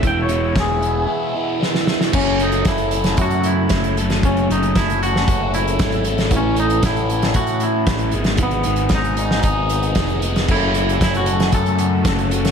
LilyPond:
<<
  \new Staff \with { instrumentName = "Analog synth pad" } { \time 4/4 \key fis \dorian \tempo 4 = 115 <gis' e'' b'' e'''>1 | r1 | r1 | r1 |
r1 | <a' fis'' cis''' e'''>1 | }
  \new Staff \with { instrumentName = "Clean electric guitar" } { \time 4/4 \key fis \dorian g''16 cis''8. gis'4 r2 | cis'8 dis'8 e'4 fis'8 e'4 r8 | cis'8 dis'8 e'8 fis'4 e'4 r8 | cis'8 dis'8 e'4 fis'8 e'4 r8 |
b4 dis'4 dis'4. r8 | e'4 e'16 fis'8. a'4. r8 | }
  \new Staff \with { instrumentName = "Overdriven electric guitar" } { \time 4/4 \key fis \dorian <e, b, e gis b e'>8 <e, b, e gis b e'>8 <e, b, e gis b e'>8 <e, b, e gis b e'>8 <e, b, e gis b e'>8 <e, b, e gis b e'>8 <e, b, e gis b e'>8 <e, b, e gis b e'>8 | <fis, cis fis a cis' a'>8 <fis a cis' a'>8 <fis a cis' a'>8 <fis a cis' a'>8 <fis, cis fis a cis' a'>4 <fis a cis' a'>8 <fis a cis' a'>8 | <fis, cis fis a cis' a'>8 <fis a cis' a'>8 <fis a cis' a'>8 <fis a cis' a'>8 <fis, cis fis a cis' a'>4 <fis a cis' a'>8 <fis a cis' a'>8 | <a, e a cis' a'>8 <a cis' a'>8 <e a cis' a'>8 <a cis' a'>8 <a, e a cis' a'>4 <e a cis' a'>8 <gis, dis gis b dis' gis'>8 |
<gis, dis gis b dis' gis'>8 <gis b dis' gis'>8 <gis b dis' gis'>8 <gis b dis' gis'>8 <gis, dis gis b dis' gis'>4 <gis b dis' gis'>8 <gis b dis' gis'>8 | <fis, cis fis a cis' a'>8 <fis a cis' a'>8 <fis a cis' a'>8 <fis a cis' a'>8 <fis, cis fis a cis' a'>4 <fis a cis' a'>8 <fis a cis' a'>8 | }
  \new Staff \with { instrumentName = "Picked electric bass" } { \clef bass \time 4/4 \key fis \dorian e,,4 e,,4 r2 | fis,,4 fis,,4 fis,4 fis,,4 | fis,,8 fis,,8 fis,,4 fis,,4 gis,,4 | a,,4 a,,4 a,4 a,,8 gis,,8~ |
gis,,8 gis,,8 gis,,4 gis,,4 f,,4 | fis,,4 fis,,4 fis,4 fis,,4 | }
  \new DrumStaff \with { instrumentName = "Drums" } \drummode { \time 4/4 <hh bd>8 hh8 <hh bd sn>8 hh8 r4 sn16 sn16 sn16 sn16 | <cymc bd>8 hh16 hh16 <hh bd sn>16 hh16 hh16 <hh sn>16 <hh bd>16 hh16 hh8 <hh bd sn>16 hh16 hh16 <hh sn>16 | <hh bd>16 hh16 hh16 hh16 <hh bd sn>16 hh16 hh16 sn16 <hh bd>8 hh16 hh16 <hh bd sn>16 hh16 hh16 <hh sn>16 | <hh bd>8 hh16 hh16 <hh bd sn>16 hh16 hh16 <hh sn>16 <hh bd>16 hh16 hh8 <hh bd sn>16 hh16 hh16 <hh sn>16 |
<hh bd>16 hh16 hh16 hh16 <hh bd sn>16 hh16 hh16 sn16 <hh bd>8 hh16 hh16 <hh bd sn>16 hh16 hh16 <hh sn>16 | <cymc bd>8 hh16 hh16 <hh bd sn>16 hh16 hh16 <hh sn>16 <hh bd>16 hh16 hh8 <hh bd sn>16 hh16 hh16 <hh sn>16 | }
>>